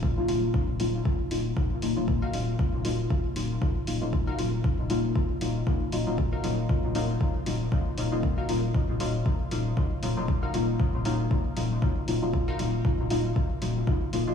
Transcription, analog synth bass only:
0, 0, Header, 1, 2, 480
1, 0, Start_track
1, 0, Key_signature, -6, "minor"
1, 0, Tempo, 512821
1, 505, Time_signature, 4, 2, 24, 8
1, 13427, End_track
2, 0, Start_track
2, 0, Title_t, "Analog synth bass"
2, 0, Program_c, 0, 38
2, 0, Note_on_c, 0, 27, 91
2, 96, Note_off_c, 0, 27, 0
2, 266, Note_on_c, 0, 27, 89
2, 455, Note_off_c, 0, 27, 0
2, 640, Note_on_c, 0, 27, 97
2, 721, Note_off_c, 0, 27, 0
2, 745, Note_on_c, 0, 27, 96
2, 935, Note_off_c, 0, 27, 0
2, 1226, Note_on_c, 0, 27, 103
2, 1415, Note_off_c, 0, 27, 0
2, 1706, Note_on_c, 0, 27, 85
2, 1808, Note_off_c, 0, 27, 0
2, 1840, Note_on_c, 0, 27, 95
2, 2016, Note_off_c, 0, 27, 0
2, 2186, Note_on_c, 0, 27, 91
2, 2375, Note_off_c, 0, 27, 0
2, 2559, Note_on_c, 0, 27, 100
2, 2640, Note_off_c, 0, 27, 0
2, 2665, Note_on_c, 0, 27, 96
2, 2855, Note_off_c, 0, 27, 0
2, 3145, Note_on_c, 0, 27, 102
2, 3335, Note_off_c, 0, 27, 0
2, 3625, Note_on_c, 0, 27, 84
2, 3728, Note_off_c, 0, 27, 0
2, 3758, Note_on_c, 0, 27, 94
2, 3935, Note_off_c, 0, 27, 0
2, 4105, Note_on_c, 0, 27, 93
2, 4295, Note_off_c, 0, 27, 0
2, 4479, Note_on_c, 0, 27, 97
2, 4560, Note_off_c, 0, 27, 0
2, 4585, Note_on_c, 0, 27, 98
2, 4775, Note_off_c, 0, 27, 0
2, 5065, Note_on_c, 0, 27, 101
2, 5255, Note_off_c, 0, 27, 0
2, 5546, Note_on_c, 0, 27, 89
2, 5648, Note_off_c, 0, 27, 0
2, 5679, Note_on_c, 0, 27, 95
2, 5856, Note_off_c, 0, 27, 0
2, 6025, Note_on_c, 0, 27, 90
2, 6215, Note_off_c, 0, 27, 0
2, 6399, Note_on_c, 0, 27, 98
2, 6480, Note_off_c, 0, 27, 0
2, 6506, Note_on_c, 0, 27, 97
2, 6695, Note_off_c, 0, 27, 0
2, 6986, Note_on_c, 0, 27, 103
2, 7175, Note_off_c, 0, 27, 0
2, 7465, Note_on_c, 0, 27, 78
2, 7568, Note_off_c, 0, 27, 0
2, 7599, Note_on_c, 0, 27, 94
2, 7776, Note_off_c, 0, 27, 0
2, 7946, Note_on_c, 0, 27, 91
2, 8135, Note_off_c, 0, 27, 0
2, 8319, Note_on_c, 0, 27, 99
2, 8400, Note_off_c, 0, 27, 0
2, 8426, Note_on_c, 0, 27, 96
2, 8615, Note_off_c, 0, 27, 0
2, 8906, Note_on_c, 0, 27, 102
2, 9095, Note_off_c, 0, 27, 0
2, 9385, Note_on_c, 0, 27, 88
2, 9487, Note_off_c, 0, 27, 0
2, 9519, Note_on_c, 0, 27, 92
2, 9696, Note_off_c, 0, 27, 0
2, 9866, Note_on_c, 0, 27, 95
2, 10055, Note_off_c, 0, 27, 0
2, 10239, Note_on_c, 0, 27, 100
2, 10320, Note_off_c, 0, 27, 0
2, 10345, Note_on_c, 0, 27, 98
2, 10535, Note_off_c, 0, 27, 0
2, 10825, Note_on_c, 0, 27, 102
2, 11015, Note_off_c, 0, 27, 0
2, 11305, Note_on_c, 0, 27, 89
2, 11408, Note_off_c, 0, 27, 0
2, 11439, Note_on_c, 0, 27, 94
2, 11616, Note_off_c, 0, 27, 0
2, 11786, Note_on_c, 0, 27, 91
2, 11975, Note_off_c, 0, 27, 0
2, 12159, Note_on_c, 0, 27, 97
2, 12240, Note_off_c, 0, 27, 0
2, 12265, Note_on_c, 0, 27, 98
2, 12455, Note_off_c, 0, 27, 0
2, 12745, Note_on_c, 0, 27, 101
2, 12935, Note_off_c, 0, 27, 0
2, 13226, Note_on_c, 0, 27, 87
2, 13328, Note_off_c, 0, 27, 0
2, 13360, Note_on_c, 0, 27, 94
2, 13427, Note_off_c, 0, 27, 0
2, 13427, End_track
0, 0, End_of_file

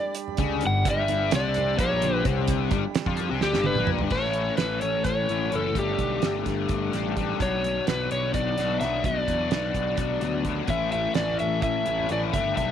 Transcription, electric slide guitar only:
0, 0, Header, 1, 2, 480
1, 0, Start_track
1, 0, Tempo, 465839
1, 896, Time_signature, 7, 3, 24, 8
1, 5939, Tempo, 469851
1, 13041, End_track
2, 0, Start_track
2, 0, Title_t, "Electric slide guitar"
2, 0, Program_c, 0, 29
2, 0, Note_on_c, 0, 74, 98
2, 136, Note_off_c, 0, 74, 0
2, 686, Note_on_c, 0, 78, 98
2, 895, Note_off_c, 0, 78, 0
2, 934, Note_on_c, 0, 76, 107
2, 1394, Note_off_c, 0, 76, 0
2, 1399, Note_on_c, 0, 74, 96
2, 1833, Note_off_c, 0, 74, 0
2, 1858, Note_on_c, 0, 73, 70
2, 2302, Note_off_c, 0, 73, 0
2, 3531, Note_on_c, 0, 67, 80
2, 3774, Note_on_c, 0, 71, 106
2, 3779, Note_off_c, 0, 67, 0
2, 3997, Note_off_c, 0, 71, 0
2, 4244, Note_on_c, 0, 73, 101
2, 4711, Note_off_c, 0, 73, 0
2, 4715, Note_on_c, 0, 71, 90
2, 4962, Note_off_c, 0, 71, 0
2, 4966, Note_on_c, 0, 73, 93
2, 5194, Note_off_c, 0, 73, 0
2, 5216, Note_on_c, 0, 73, 83
2, 5713, Note_off_c, 0, 73, 0
2, 5724, Note_on_c, 0, 69, 82
2, 5937, Note_off_c, 0, 69, 0
2, 5964, Note_on_c, 0, 67, 70
2, 6629, Note_off_c, 0, 67, 0
2, 7634, Note_on_c, 0, 73, 75
2, 8105, Note_off_c, 0, 73, 0
2, 8110, Note_on_c, 0, 71, 75
2, 8342, Note_off_c, 0, 71, 0
2, 8346, Note_on_c, 0, 73, 87
2, 8573, Note_off_c, 0, 73, 0
2, 8577, Note_on_c, 0, 74, 85
2, 9040, Note_off_c, 0, 74, 0
2, 9044, Note_on_c, 0, 76, 97
2, 9273, Note_off_c, 0, 76, 0
2, 9304, Note_on_c, 0, 74, 81
2, 10699, Note_off_c, 0, 74, 0
2, 10982, Note_on_c, 0, 76, 94
2, 11200, Note_off_c, 0, 76, 0
2, 11212, Note_on_c, 0, 76, 97
2, 11438, Note_off_c, 0, 76, 0
2, 11450, Note_on_c, 0, 74, 91
2, 11694, Note_off_c, 0, 74, 0
2, 11698, Note_on_c, 0, 76, 87
2, 11923, Note_off_c, 0, 76, 0
2, 11935, Note_on_c, 0, 76, 82
2, 12431, Note_off_c, 0, 76, 0
2, 12437, Note_on_c, 0, 74, 87
2, 12500, Note_off_c, 0, 74, 0
2, 12657, Note_on_c, 0, 76, 98
2, 12885, Note_off_c, 0, 76, 0
2, 12897, Note_on_c, 0, 76, 91
2, 13041, Note_off_c, 0, 76, 0
2, 13041, End_track
0, 0, End_of_file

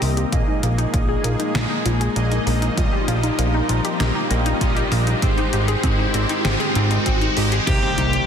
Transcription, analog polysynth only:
0, 0, Header, 1, 2, 480
1, 0, Start_track
1, 0, Tempo, 612245
1, 256, Time_signature, 4, 2, 24, 8
1, 6479, End_track
2, 0, Start_track
2, 0, Title_t, "Analog polysynth"
2, 0, Program_c, 0, 90
2, 0, Note_on_c, 0, 48, 84
2, 0, Note_on_c, 0, 60, 80
2, 0, Note_on_c, 0, 70, 74
2, 0, Note_on_c, 0, 75, 91
2, 226, Note_off_c, 0, 48, 0
2, 226, Note_off_c, 0, 60, 0
2, 226, Note_off_c, 0, 70, 0
2, 226, Note_off_c, 0, 75, 0
2, 253, Note_on_c, 0, 46, 74
2, 253, Note_on_c, 0, 58, 69
2, 253, Note_on_c, 0, 68, 67
2, 253, Note_on_c, 0, 75, 79
2, 1665, Note_off_c, 0, 46, 0
2, 1665, Note_off_c, 0, 68, 0
2, 1665, Note_off_c, 0, 75, 0
2, 1666, Note_off_c, 0, 58, 0
2, 1695, Note_on_c, 0, 46, 81
2, 1695, Note_on_c, 0, 58, 79
2, 1695, Note_on_c, 0, 68, 79
2, 1695, Note_on_c, 0, 75, 93
2, 2147, Note_off_c, 0, 46, 0
2, 2147, Note_off_c, 0, 58, 0
2, 2147, Note_off_c, 0, 68, 0
2, 2147, Note_off_c, 0, 75, 0
2, 2175, Note_on_c, 0, 46, 75
2, 2175, Note_on_c, 0, 55, 69
2, 2175, Note_on_c, 0, 65, 66
2, 2175, Note_on_c, 0, 75, 84
2, 3586, Note_off_c, 0, 46, 0
2, 3586, Note_off_c, 0, 55, 0
2, 3586, Note_off_c, 0, 65, 0
2, 3586, Note_off_c, 0, 75, 0
2, 3615, Note_on_c, 0, 55, 80
2, 3615, Note_on_c, 0, 65, 78
2, 3616, Note_on_c, 0, 46, 82
2, 3616, Note_on_c, 0, 75, 92
2, 4067, Note_off_c, 0, 46, 0
2, 4067, Note_off_c, 0, 55, 0
2, 4067, Note_off_c, 0, 65, 0
2, 4067, Note_off_c, 0, 75, 0
2, 4094, Note_on_c, 0, 44, 76
2, 4094, Note_on_c, 0, 56, 68
2, 4094, Note_on_c, 0, 72, 85
2, 4095, Note_on_c, 0, 67, 71
2, 5506, Note_off_c, 0, 44, 0
2, 5506, Note_off_c, 0, 56, 0
2, 5506, Note_off_c, 0, 72, 0
2, 5507, Note_off_c, 0, 67, 0
2, 5775, Note_on_c, 0, 56, 89
2, 5775, Note_on_c, 0, 67, 78
2, 5775, Note_on_c, 0, 75, 94
2, 5987, Note_off_c, 0, 56, 0
2, 5987, Note_off_c, 0, 67, 0
2, 5987, Note_off_c, 0, 75, 0
2, 6016, Note_on_c, 0, 48, 75
2, 6016, Note_on_c, 0, 58, 69
2, 6016, Note_on_c, 0, 63, 70
2, 6016, Note_on_c, 0, 72, 82
2, 6479, Note_off_c, 0, 48, 0
2, 6479, Note_off_c, 0, 58, 0
2, 6479, Note_off_c, 0, 63, 0
2, 6479, Note_off_c, 0, 72, 0
2, 6479, End_track
0, 0, End_of_file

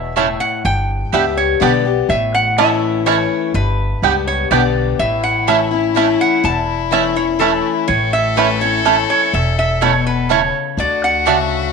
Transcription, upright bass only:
0, 0, Header, 1, 2, 480
1, 0, Start_track
1, 0, Tempo, 482703
1, 640, Time_signature, 3, 2, 24, 8
1, 11659, End_track
2, 0, Start_track
2, 0, Title_t, "Upright bass"
2, 0, Program_c, 0, 32
2, 0, Note_on_c, 0, 28, 83
2, 343, Note_off_c, 0, 28, 0
2, 643, Note_on_c, 0, 31, 96
2, 1024, Note_off_c, 0, 31, 0
2, 1122, Note_on_c, 0, 37, 76
2, 1530, Note_off_c, 0, 37, 0
2, 1601, Note_on_c, 0, 35, 79
2, 2010, Note_off_c, 0, 35, 0
2, 2077, Note_on_c, 0, 33, 95
2, 3224, Note_off_c, 0, 33, 0
2, 3524, Note_on_c, 0, 31, 89
2, 3905, Note_off_c, 0, 31, 0
2, 4001, Note_on_c, 0, 37, 84
2, 4411, Note_off_c, 0, 37, 0
2, 4482, Note_on_c, 0, 35, 82
2, 4892, Note_off_c, 0, 35, 0
2, 4964, Note_on_c, 0, 33, 91
2, 6108, Note_off_c, 0, 33, 0
2, 6404, Note_on_c, 0, 28, 77
2, 7548, Note_off_c, 0, 28, 0
2, 7843, Note_on_c, 0, 33, 84
2, 8986, Note_off_c, 0, 33, 0
2, 9282, Note_on_c, 0, 28, 89
2, 10425, Note_off_c, 0, 28, 0
2, 10714, Note_on_c, 0, 38, 86
2, 11659, Note_off_c, 0, 38, 0
2, 11659, End_track
0, 0, End_of_file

